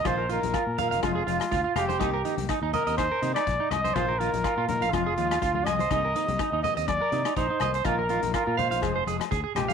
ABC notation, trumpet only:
X:1
M:4/4
L:1/16
Q:"Swing 16ths" 1/4=123
K:Cm
V:1 name="Trumpet"
c2 B4 B2 F6 G2- | G4 z2 B2 c3 d3 e2 | c2 B4 B2 F6 e2- | e6 e2 d4 c4 |
B4 B2 c4 z4 G2 |]